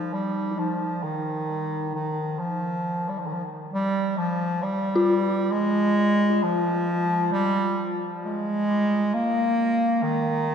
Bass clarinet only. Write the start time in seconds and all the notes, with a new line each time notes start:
Already playing: F3
0.13 G3
0.58 F3
1.03 D#3
1.95 D#3
2.39 F3
3.09 G3
3.19 F3
3.26 D#3
3.33 F3
3.73 G3
4.18 F3
4.62 G3
5.52 G#3
6.43 F3
7.32 G3
8.25 G#3
9.14 A#3
10.03 D#3